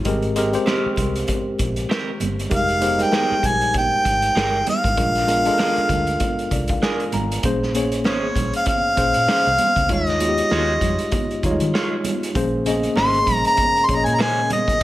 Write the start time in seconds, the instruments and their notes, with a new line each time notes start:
0.05 fingered electric bass G#1, tine electric piano G#3 C4 G4 A#4, kick, closed hi-hat, muted conga, low conga
0.22 closed hi-hat
0.36 tine electric piano G#3 C4 G4 A#4, closed hi-hat, high conga
0.53 tine electric piano G#3 C4 G4 C5, closed hi-hat
0.66 clean electric guitar C4 G4 A#4, snare, muted conga, high conga
0.86 muted fingered electric bass stroke
0.96 fingered electric bass C2, kick, closed hi-hat, muted conga, low conga
1.16 closed hi-hat
1.27 kick, closed hi-hat, high conga
1.59 fingered electric bass A#1, kick, closed hi-hat, muted conga
1.76 closed hi-hat
1.89 clean electric guitar C4 G4 A#4, snare, muted conga
2.20 fingered electric bass G1, closed hi-hat, high conga, low conga
2.39 closed hi-hat
2.50 fingered electric bass F1, tine electric piano G#3 D#4 G4 A#4, kick, closed hi-hat, muted conga, low conga
2.55 harmonica F5
2.68 closed hi-hat
2.81 tine electric piano G#3 D#4 G4 C5, closed hi-hat, muted conga, high conga
2.98 tine electric piano G3 G#3 D#4 A#4, closed hi-hat
3.03 harmonica G5
3.12 clean electric guitar D#4 G#4 A#4, snare, muted conga, high conga
3.31 muted fingered electric bass stroke
3.43 fingered electric bass A#1, kick, closed hi-hat, muted conga, low conga
3.47 harmonica G#5
3.61 closed hi-hat
3.74 harmonica G5, kick, closed hi-hat, muted conga, high conga
4.05 fingered electric bass G#1, kick, closed hi-hat, muted conga
4.22 closed hi-hat
4.35 fingered electric bass G1, clean electric guitar D#4 G#4 A#4, snare, muted conga
4.67 harmonica F5, closed hi-hat, muted conga, high conga, low conga
4.84 fingered electric bass G#1, kick, closed hi-hat
4.97 fingered electric bass A#1, tine electric piano G#3 D4 F4 A#4, kick, closed hi-hat, low conga
5.15 snare, closed hi-hat
5.27 tine electric piano G#3 D4 F4 A#4, closed hi-hat, muted conga, high conga
5.45 tine electric piano G#3 D4 F4 A4, closed hi-hat
5.54 tine electric piano A#4
5.58 clean electric guitar D4 G#4 A#4, snare, high conga
5.76 muted fingered electric bass stroke, closed hi-hat
5.89 fingered electric bass D2, kick, closed hi-hat, muted conga, low conga
6.07 closed hi-hat
6.20 kick, closed hi-hat, muted conga, high conga
6.39 closed hi-hat
6.51 fingered electric bass C2, tine electric piano D5, kick, closed hi-hat, muted conga
6.68 tine electric piano F5, kick, closed hi-hat
6.82 clean electric guitar D4 G#4 A#4, tine electric piano G#5, snare, muted conga
7.00 closed hi-hat
7.12 fingered electric bass G#1, tine electric piano A#5, closed hi-hat, high conga, low conga
7.32 closed hi-hat
7.43 fingered electric bass A#1, tine electric piano A#3 C#4 G#4 C5, kick, closed hi-hat, muted conga, low conga
7.63 snare
7.74 tine electric piano A#3 C#4 G#4 C#5, closed hi-hat, high conga
7.92 closed hi-hat
8.04 fingered electric bass G#1, clean electric guitar C#4 G#4 C5, harmonica C#5, snare, muted conga, high conga
8.35 fingered electric bass A#1, kick, closed hi-hat, muted conga, low conga
8.53 harmonica F5, closed hi-hat
8.66 harmonica F5, kick, closed hi-hat, muted conga, high conga
8.96 fingered electric bass A#1, tine electric piano A#3 C#4 G#4 C5, kick, closed hi-hat
9.14 fingered electric bass A#2, closed hi-hat
9.28 clean electric guitar C#4 G#4 C5, muted fingered electric bass stroke, snare
9.46 fingered electric bass C2, closed hi-hat
9.58 closed hi-hat, high conga, low conga
9.76 fingered electric bass C#2, kick, closed hi-hat
9.89 fingered electric bass D#2, tine electric piano G#3 D#4 F4 C#5, harmonica D#5, kick, closed hi-hat, muted conga, low conga
10.07 snare, closed hi-hat
10.20 tine electric piano G#3 D#4 F4 F#4, closed hi-hat, muted conga, high conga
10.29 tine electric piano G4
10.38 closed hi-hat
10.50 fingered electric bass D#2, clean electric guitar F4 G#4 C#5, snare, high conga
10.81 fingered electric bass F2, kick, closed hi-hat, muted conga, low conga
10.99 closed hi-hat
11.12 kick, closed hi-hat, muted conga, high conga
11.31 closed hi-hat
11.43 fingered electric bass D#2, tine electric piano G3 D#4 F4 C#5, kick, closed hi-hat, muted conga
11.51 tine electric piano G#3
11.60 fingered electric bass D#3, closed hi-hat
11.74 clean electric guitar F4 G#4 C#5, snare
12.04 closed hi-hat, high conga, low conga
12.23 closed hi-hat
12.35 fingered electric bass A#1, tonewheel organ C#3 G#3 A#3, tine electric piano A#3 C#4 G#4 C5, kick, closed hi-hat, muted conga, low conga
12.66 tine electric piano A#3 C#4 G#4 D#5, closed hi-hat, muted conga, high conga
12.83 closed hi-hat
12.96 fingered electric bass G#1, clean electric guitar C#4 G#4 C5, harmonica C6, snare, muted conga, high conga
13.14 closed hi-hat
13.26 fingered electric bass A#1, kick, closed hi-hat, muted conga, low conga
13.45 harmonica A#5, closed hi-hat
13.57 kick, closed hi-hat, high conga
13.76 closed hi-hat
13.86 fingered electric bass A#1, tine electric piano A#3 C#4 G#4 C#5, harmonica C6, kick, closed hi-hat, muted conga
13.95 tine electric piano D#5, harmonica A#5
14.05 fingered electric bass A#2, harmonica G#5, closed hi-hat
14.15 clean electric guitar C#4, harmonica A#5
14.19 clean electric guitar G#4 C5, harmonica G#5, snare, muted conga
14.50 harmonica D#5, closed hi-hat, muted conga, high conga, low conga
14.68 kick, closed hi-hat